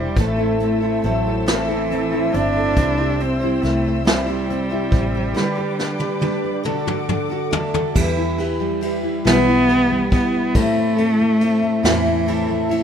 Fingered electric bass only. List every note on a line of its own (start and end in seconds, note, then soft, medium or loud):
0.00 0.14 E1 medium
0.17 1.00 A1 medium
1.04 2.30 A1 medium
2.34 2.74 G1 medium
2.77 3.59 C2 loud
3.63 4.88 C2 medium
4.92 5.33 A1 loud
7.96 9.22 E2 loud
9.25 10.55 B1 medium
10.55 11.80 A1 loud
11.84 12.83 E2 medium